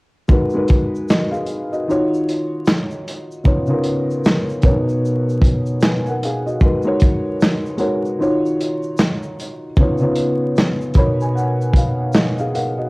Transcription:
0.28 0.51 G#3 medium
0.28 0.51 D#4 medium
0.28 0.52 F#4 medium
0.28 0.52 A#4 medium
0.28 0.52 B4 medium
0.28 kick loud
0.28 shaker medium
0.50 1.41 G#3 medium
0.50 shaker soft
0.55 1.41 D#4 medium
0.55 1.09 F#4 medium
0.55 1.10 A#4 medium
0.55 1.10 B4 loud
0.68 kick medium
0.68 closed hi-hat medium
0.68 shaker soft
0.95 shaker soft
1.09 1.32 F#4 soft
1.09 1.32 D#5 medium
1.09 snare loud
1.09 clap medium
1.09 shaker medium
1.31 1.70 G#4 medium
1.31 1.69 F5 medium
1.31 shaker soft
1.46 closed hi-hat medium
1.46 shaker soft
1.72 1.88 F#4 soft
1.72 2.09 D#5 medium
1.72 shaker soft
1.87 3.33 D#3 medium
1.87 3.34 D#4 medium
1.87 3.34 F4 medium
1.87 3.34 F#4 medium
1.87 3.35 C#5 loud
1.87 shaker medium
2.14 shaker soft
2.29 closed hi-hat medium
2.29 shaker soft
2.65 snare loud
2.65 clap loud
2.65 shaker medium
2.91 shaker soft
3.08 closed hi-hat medium
3.08 shaker soft
3.31 shaker soft
3.44 3.66 C#3 medium
3.44 3.66 B3 medium
3.44 3.67 D#4 medium
3.44 3.67 F4 medium
3.44 3.68 C#5 medium
3.44 kick loud
3.44 shaker medium
3.66 4.55 C#3 medium
3.66 4.55 B3 medium
3.66 4.56 D#4 medium
3.66 4.56 F4 medium
3.66 shaker soft
3.70 4.57 A#4 medium
3.83 closed hi-hat medium
3.83 shaker soft
4.10 shaker soft
4.24 snare loud
4.24 clap medium
4.24 shaker medium
4.49 shaker soft
4.62 6.09 B2 medium
4.62 6.09 B3 medium
4.62 4.72 C#4 medium
4.62 5.82 A#4 medium
4.62 5.83 C#5 loud
4.62 kick medium
4.62 closed hi-hat medium
4.62 shaker soft
4.70 6.13 D#4 medium
4.88 shaker soft
5.05 shaker medium
5.29 shaker soft
5.42 kick medium
5.42 closed hi-hat medium
5.42 shaker soft
5.66 shaker soft
5.81 6.06 B4 soft
5.81 6.05 G#5 medium
5.81 snare loud
5.81 clap loud
5.81 shaker medium
6.06 6.22 A#4 medium
6.06 6.22 F#5 medium
6.06 shaker soft
6.23 6.46 G#4 medium
6.23 6.46 F5 medium
6.23 closed hi-hat medium
6.23 shaker soft
6.46 6.61 F#4 medium
6.46 6.83 D#5 medium
6.46 shaker soft
6.60 6.82 G#3 medium
6.60 6.83 D#4 medium
6.60 6.83 F#4 medium
6.60 6.84 A#4 medium
6.60 6.84 B4 medium
6.60 kick loud
6.60 shaker medium
6.82 7.71 G#3 medium
6.82 7.72 D#4 medium
6.82 7.72 F#4 medium
6.82 7.72 A#4 medium
6.82 shaker soft
6.87 7.73 C#5 loud
7.00 kick medium
7.00 closed hi-hat medium
7.00 shaker soft
7.41 snare loud
7.41 clap loud
7.41 shaker medium
7.66 shaker soft
7.77 8.18 G#3 medium
7.77 8.18 D#4 medium
7.77 8.18 F#4 medium
7.77 8.19 A#4 medium
7.77 8.19 C#5 medium
7.77 closed hi-hat soft
7.77 shaker soft
8.05 shaker soft
8.19 9.65 D#3 medium
8.19 9.65 D#4 medium
8.19 9.66 F4 medium
8.19 9.66 F#4 medium
8.19 9.66 C#5 loud
8.19 shaker medium
8.45 shaker soft
8.60 closed hi-hat medium
8.60 shaker medium
8.82 shaker soft
8.97 snare loud
8.97 clap loud
8.97 shaker medium
9.23 shaker soft
9.40 closed hi-hat medium
9.40 shaker soft
9.76 9.99 C#3 medium
9.76 9.99 B3 medium
9.76 10.00 D#4 medium
9.76 10.00 F4 medium
9.76 kick loud
9.76 shaker medium
9.81 10.01 C#5 medium
9.98 10.87 C#3 medium
9.98 10.88 B3 medium
9.98 10.88 D#4 medium
9.98 shaker soft
10.03 10.88 F4 medium
10.03 10.89 C#5 medium
10.16 closed hi-hat medium
10.16 shaker soft
10.56 snare loud
10.56 clap medium
10.56 shaker medium
10.81 shaker soft
10.94 12.41 B2 medium
10.94 12.41 B3 medium
10.94 12.42 D#4 medium
10.94 12.15 A#4 medium
10.94 11.18 B5 medium
10.94 kick loud
10.94 closed hi-hat medium
10.94 shaker soft
10.98 12.15 C#5 loud
11.21 11.35 G#5 medium
11.21 shaker soft
11.35 11.72 F#5 medium
11.35 shaker medium
11.61 shaker soft
11.74 11.98 F5 medium
11.74 kick medium
11.74 closed hi-hat medium
11.74 shaker soft
12.00 12.13 F#5 medium
12.13 12.52 D#5 medium
12.13 snare loud
12.13 clap medium
12.13 shaker medium
12.38 12.53 G#4 medium
12.38 12.53 F5 medium
12.38 shaker soft
12.54 12.77 A#4 medium
12.54 12.89 F5 medium
12.54 12.77 F#5 medium
12.54 closed hi-hat medium
12.54 shaker medium
12.78 12.89 F#4 soft
12.78 12.89 D#5 medium

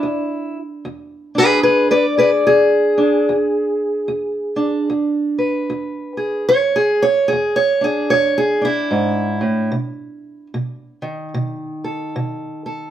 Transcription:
0.00 0.78 E2 medium
0.00 0.57 E4 loud
0.85 1.59 E2 medium
1.35 2.97 D4 soft
1.35 1.62 B4 loud
1.39 1.62 G#4 medium
1.63 2.40 E2 medium
1.63 1.91 G#4 medium
1.63 1.90 B4 medium
1.91 2.05 B4 medium
1.91 2.18 D5 loud
2.18 2.46 G#4 soft
2.18 2.29 B4 medium
2.18 2.46 D5 loud
2.47 3.22 E2 medium
2.47 4.89 G#4 loud
2.98 3.32 D4 medium
3.29 4.02 E2 medium
4.08 4.82 E2 medium
4.56 6.46 D4 soft
4.90 5.63 E2 medium
5.38 6.48 B4 soft
5.70 6.44 E2 medium
6.17 6.46 G#4 soft
6.49 7.24 E2 medium
6.49 6.76 C#5 loud
6.76 7.03 G#4 loud
7.02 7.30 C#5 loud
7.28 7.56 G#4 medium
7.33 8.06 E2 medium
7.56 7.84 C#5 loud
7.81 8.60 D4 soft
7.81 8.11 G#4 medium
8.10 8.87 E2 medium
8.10 8.38 C#5 loud
8.38 8.65 G#4 medium
8.61 9.70 D4 soft
8.61 9.73 E4 loud
8.91 9.40 G#2 medium
9.41 9.73 A2 medium
9.72 10.46 B2 medium
10.54 11.28 B2 medium
11.02 12.90 D#3 soft
11.34 12.09 B2 medium
11.84 12.64 A4 soft
12.16 12.90 B2 medium
12.66 12.90 A4 soft

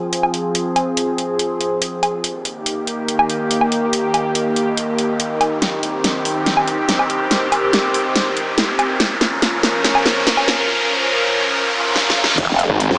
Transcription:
0.00 2.21 F3 medium
0.00 2.21 C4 medium
0.00 2.21 G#4 medium
0.00 riser medium
0.13 closed hi-hat medium
0.23 low woodblock medium
0.34 closed hi-hat medium
0.55 closed hi-hat medium
0.76 closed hi-hat medium
0.76 low woodblock medium
0.97 closed hi-hat medium
1.18 closed hi-hat medium
1.39 closed hi-hat medium
1.61 closed hi-hat medium
1.82 closed hi-hat medium
2.03 closed hi-hat medium
2.03 low woodblock soft
2.24 8.96 D#3 medium
2.24 5.59 A#3 medium
2.24 5.58 G4 medium
2.24 closed hi-hat medium
2.45 closed hi-hat medium
2.66 closed hi-hat medium
2.87 closed hi-hat medium
3.08 closed hi-hat medium
3.19 low woodblock medium
3.30 closed hi-hat medium
3.51 closed hi-hat medium
3.61 low woodblock soft
3.72 closed hi-hat medium
3.93 closed hi-hat medium
4.14 closed hi-hat medium
4.14 low woodblock soft
4.35 closed hi-hat medium
4.56 closed hi-hat medium
4.77 closed hi-hat medium
4.99 closed hi-hat medium
5.20 closed hi-hat medium
5.41 closed hi-hat soft
5.41 low woodblock medium
5.62 8.96 C4 medium
5.62 8.96 G4 medium
5.62 snare soft
5.62 closed hi-hat medium
5.83 closed hi-hat medium
6.04 snare medium
6.04 closed hi-hat medium
6.25 open hi-hat medium
6.46 snare medium
6.46 closed hi-hat medium
6.57 low woodblock medium
6.68 closed hi-hat soft
6.89 snare medium
6.89 closed hi-hat medium
6.99 low woodblock medium
7.10 closed hi-hat medium
7.31 snare medium
7.31 closed hi-hat medium
7.52 closed hi-hat medium
7.52 low woodblock medium
7.73 snare medium
7.73 closed hi-hat medium
7.94 open hi-hat medium
8.16 snare medium
8.16 closed hi-hat medium
8.37 closed hi-hat soft
8.58 snare medium
8.58 closed hi-hat medium
8.79 closed hi-hat soft
8.79 low woodblock medium
9.00 12.35 F3 medium
9.00 12.35 C#4 medium
9.00 12.35 A#4 medium
9.00 snare medium
9.00 closed hi-hat medium
9.21 snare medium
9.21 closed hi-hat medium
9.42 snare medium
9.42 closed hi-hat medium
9.63 snare medium
9.63 open hi-hat loud
9.84 snare medium
9.84 closed hi-hat medium
9.95 low woodblock medium
10.06 snare medium
10.06 closed hi-hat medium
10.27 snare medium
10.27 closed hi-hat medium
10.37 low woodblock medium
10.48 snare medium
10.48 closed hi-hat medium
11.53 swell medium
11.96 snare medium
12.10 snare medium
12.24 snare loud
12.38 12.68 F1 loud
12.38 12.98 F3 medium
12.38 12.98 C4 medium
12.38 12.98 G#4 medium
12.38 kick loud
12.38 closed hi-hat medium
12.38 crash loud
12.38 impact medium
12.59 closed hi-hat medium
12.70 12.89 G#1 medium
12.70 kick medium
12.80 closed hi-hat medium
12.91 12.98 F2 loud
12.91 snare soft

